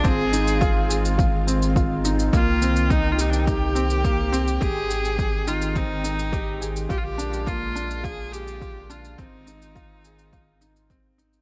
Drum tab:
SH |x-xxx-xxx-xxx-xx|x-xxx-xxx-xxx-xx|x-xxx-xxx-xxx-xx|x-xxx-xxx-xxx-xx|
BD |o---o---o---o---|o---o---o---o---|o---o---o---o---|o---o---o---o---|

SH |x-xxx-xxx-xxx-xx|
BD |o---o---o---o---|